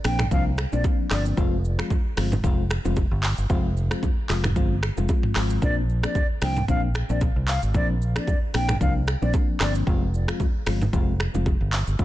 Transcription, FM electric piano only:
0.04 F3 A#3 C4 D4
0.31 F3 A#3 C4 D4
0.72 F3 A#3 C4 D4
1.10 F3 A#3 C4 D4
1.37 F3 G#3 C4 F4
1.78 F3 G#3 C4 F4
2.17 F3 G#3 C4 F4
2.43 F3 G#3 C4 F4
2.85 F3 G#3 C4 F4
3.50 F3 G#3 C4 F4
3.91 F3 G#3 C4 F4
4.29 F3 G#3 C4 F4
4.56 F3 G#3 C4 F4
4.97 F3 G#3 C4 F4
5.35 F3 G#3 C4 F4
5.62 F3 A#3 C4 D4
6.03 F3 A#3 C4 D4
6.41 F3 A#3 C4 D4
6.68 F3 A#3 C4 D4
7.09 F3 A#3 C4 D4
7.74 F3 A#3 C4 D4
8.15 F3 A#3 C4 D4
8.54 F3 A#3 C4 D4
8.80 F3 A#3 C4 D4
9.22 F3 A#3 C4 D4
9.60 F3 A#3 C4 D4
9.87 F3 G#3 C4 F4
10.28 F3 G#3 C4 F4
10.66 F3 G#3 C4 F4
10.93 F3 G#3 C4 F4
11.34 F3 G#3 C4 F4
11.99 F3 G#3 C4 F4

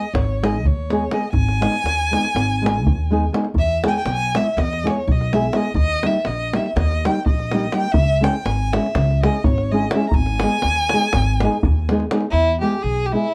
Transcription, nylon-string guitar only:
0.43 G#3 B3 D#4 G#4
0.91 G#3 B3 D#4 G#4
1.11 G#3 B3 D#4 G#4
1.61 G#3 B3 D#4 G#4
2.11 G#3 B3 D#4 G#4
2.62 G#3 B3 D#4 G#4
3.11 G#3 B3 D#4 G#4
3.32 G#3 B3 D#4 G#4
3.84 G#3 B3 E4 G#4
4.35 G#3 B3 E4 G#4
4.83 G#3 B3 E4 G#4
5.32 G#3 B3 E4 G#4
5.54 G#3 B3 E4 G#4
6.04 G3 A#3 D#4 G4
6.53 G3 A#3 D#4 G4
7.05 G3 A#3 D#4 G4
7.53 G3 A#3 D#4 G4
7.73 G3 A#3 D#4 G4
8.21 G#3 C#4 E4 G#4
8.73 G#3 C#4 E4 G#4
9.23 G#3 C#4 E4 G#4
9.72 G#3 C#4 E4 G#4
9.94 G#3 C#4 E4 G#4
10.42 G#3 B3 D#4 G#4
10.93 G#3 B3 D#4 G#4
11.43 G#3 B3 D#4 G#4
11.91 G#3 B3 D#4 G#4
12.12 G#3 B3 D#4 G#4
12.61 G#3 B3 E4 G#4
13.13 G#3 B3 E4 G#4

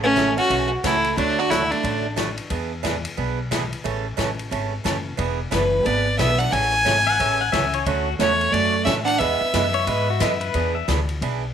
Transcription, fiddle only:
0.03 C#4
0.37 F#4
0.84 E4
1.18 D4
1.38 F#4
1.50 E4
1.71 D4
5.51 B4
5.85 D5
6.18 E5
6.38 F#5
6.52 G#5
8.20 C#5
8.53 D5
8.85 E5
9.05 F#5
9.18 E5

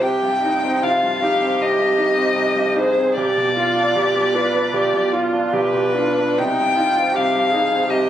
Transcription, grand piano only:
0.00 C2
0.22 G2
0.44 D#4
0.64 C4
0.83 C2
1.03 G2
1.22 D#4
1.42 C4
1.60 C2
1.78 G2
1.98 D#4
2.17 C4
2.35 C2
2.56 G2
2.76 D#4
2.98 C4
3.17 B1
3.37 B2
3.57 F4
3.76 D4
3.96 B1
4.16 B2
4.35 F4
4.54 D4
4.73 B1
4.93 B2
5.13 F4
5.33 D4
5.53 B1
5.74 B2
5.97 F4
6.19 D4
6.40 C2
6.60 G2
6.79 D#4
6.98 C4
7.17 C2
7.35 G2
7.54 D#4
7.72 C4
7.90 C2

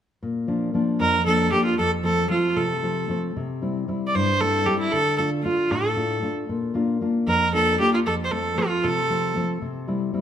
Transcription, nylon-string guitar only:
0.23 A#2
0.47 F3 A#3 D4
0.74 F3 A#3 D4
1.00 F2
1.26 F3 A#3 D4
1.52 F3 A#3 D4
1.79 F2
2.03 F3 A3 C4
2.30 F3 A3 C4
2.57 C3
2.83 F3 A3 C4
3.09 F3 A3 C4
3.36 C3
3.62 G3 C4 E4
3.88 G3 C4 E4
4.15 G2
4.40 G3 C4 E4
4.66 G3 C4 E4
4.93 D3
5.19 A3 D4 F4
5.45 A3 D4 F4
5.71 A2
5.96 A3 D4 F4
6.22 A3 D4 F4
6.49 A#2
6.74 A#3 D4 F4
7.01 A#3 D4 F4
7.27 F2
7.53 A#3 D4 F4
7.79 A#3 D4 F4
8.06 F2
8.31 F3 A3 C4
8.58 F3 A3 C4
8.84 C3
9.10 F3 A3 C4
9.36 F3 A3 C4
9.62 C3
9.88 G3 C4 E4
10.14 G3 C4 E4

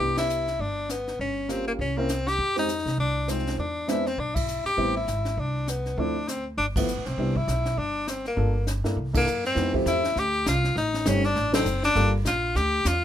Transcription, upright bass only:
0.00 C2
0.59 G1
1.19 G1
1.79 C2
2.39 F2
2.86 C3
2.98 C2
3.58 E2
4.18 B1
4.65 muted upright bass stroke
4.77 A1
5.07 G#1
5.37 C2
5.98 D2
6.57 G1
6.97 A1
7.07 B1
7.18 C2
7.48 B1
7.77 G1
8.37 G1
8.84 G2
8.97 C2
9.27 F#2
9.56 F2
9.86 E2
10.16 D2
10.46 C2
10.76 A1
11.05 G1
11.35 A1
11.65 F#1
11.96 G1
12.25 A#1
12.55 D2
12.85 E2

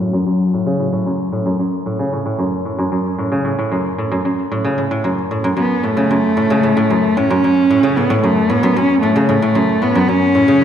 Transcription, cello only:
Already playing: F#3
0.81 F#3
5.57 B3
5.84 A3
7.17 C#4
7.96 B3
8.22 A3
8.49 B3
8.76 C#4
9.01 A3
9.28 A3
9.82 B3
10.08 C#4

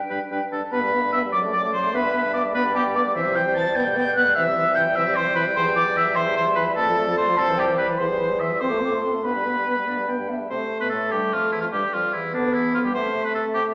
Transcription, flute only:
Already playing: G5
0.51 A5
0.71 B5
1.12 E6
1.32 D6
1.52 D6
1.74 C6
1.94 B5
2.34 D6
2.55 B5
2.75 G5
2.95 D6
3.16 E6
3.35 G6
3.55 A6
3.75 G6
3.95 G6
4.15 F#6
4.35 E6
4.75 G6
4.95 E6
5.16 C6
5.35 B5
5.56 C6
5.75 D6
5.97 E6
6.15 C6
6.35 C6
6.56 B5
6.75 A5
7.17 C6
7.36 A5
7.57 G5
7.77 B5
7.98 C6
8.40 E6
8.60 C6
8.68 D6
8.78 C6
8.85 D6
8.94 C6
9.24 B5
10.51 C5
10.81 B4
10.91 A4
11.10 G4
11.32 F4
11.53 E4
11.63 F4
11.73 G4
11.93 F4
12.14 E4
12.35 D4
12.53 E4
12.74 F4
12.84 G4
12.95 E5
13.13 E5
13.34 E5
13.54 E5

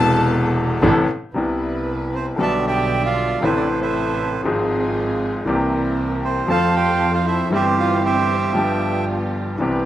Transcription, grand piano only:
Already playing: E1 E2 C3 A3 B3 E4
0.82 A1 A2 C3 A3 B3 E4
1.34 C2 C3 G3 B3 E4
2.36 B1 B2 D3 G3 B3
2.41 D4
3.41 A1 A2 C3 A3 C4 E4
4.43 G#1 G#2 F3 G#3 C4
4.48 G#4
5.46 C2 C3 E3 A#3 C4 G4
6.48 F2 F3 A3 C4 A4
7.50 G1 G2 E3 G3 C4
7.54 G4
8.53 G1 G2 F3 B3 D4
8.57 G4
9.58 C2 C3 E3 B3 C4 G4

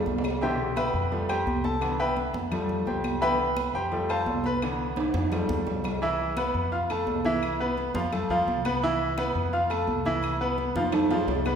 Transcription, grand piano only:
Already playing: F3 G3 A3
0.42 B2 D3 E3 G4 C5 E5 G5
0.77 B4 E5 G5 B5
1.12 F3 G3 A3
1.29 G4 C5 G5
1.65 A4 A5
1.81 D3 E3 B3
2.00 B4 E5 G5 B5
2.51 F3 G3 A3
2.87 G4 C5 G5
3.21 D3 E3 B3 B4 E5 G5 B5
3.75 G4 C5 G5
3.92 F3 G3 A3
4.10 A4 C5 F5 A5
4.46 B4 B5
4.63 D3 E3 B3
5.32 F3 G3 A3
6.02 E3 E4 E5
6.37 B3 B4 B5
6.72 F4 F5 F6
6.90 A3 A4 A5
7.25 E3 E4 E5
7.60 B3 B4 B5
7.95 F3 F4 F5
8.13 A3 A4 A5
8.30 F3 F4 F5
8.66 B3 B4 B5
8.83 E3 E4 E5
9.18 B3 B4 B5
9.53 F4 F5 F6
9.70 A3 A4 A5
10.06 E3 E4 E5
10.41 B3 B4 B5
10.76 F3 F4 F5
10.93 A3 A4 A5
11.11 F3 F4 F5
11.46 B3 B4 B5

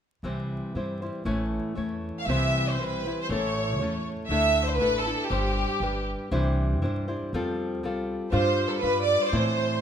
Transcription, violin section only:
2.18 F5
2.29 E5
2.69 C5
2.82 B4
3.21 C5
3.32 C#5
4.28 E5
4.64 C5
4.75 B4
5.00 A4
5.26 G4
8.31 C5
8.69 A4
8.80 B4
9.04 D5
9.29 C5

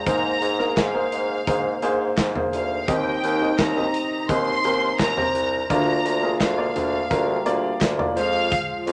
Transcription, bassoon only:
0.06 G#2
0.42 G#2
0.77 G#2
1.12 G#2
1.47 G#2
1.82 G#2
2.17 G#2
2.53 D2
2.88 D#2
3.23 D#2
3.59 D#2
4.29 D#2
4.64 D#2
4.99 D#2
5.34 C2
5.70 D2
6.05 D2
6.40 D2
6.75 D2
7.11 D2
7.45 D2
7.81 D2
8.16 F2
8.87 F2

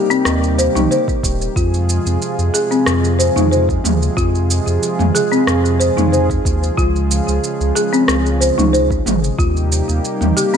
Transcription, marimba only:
0.10 C4
0.58 C5
0.75 D#4
0.91 C5
1.56 F4
2.54 G#4
2.71 C4
3.19 C5
3.36 D#4
3.51 C5
4.17 F4
5.15 G#4
5.32 C4
5.80 C5
5.97 D#4
6.12 C5
6.77 F4
7.76 G#4
7.93 C4
8.41 C5
8.58 D#4
8.73 C5
9.39 F4
10.37 G4
10.54 C4

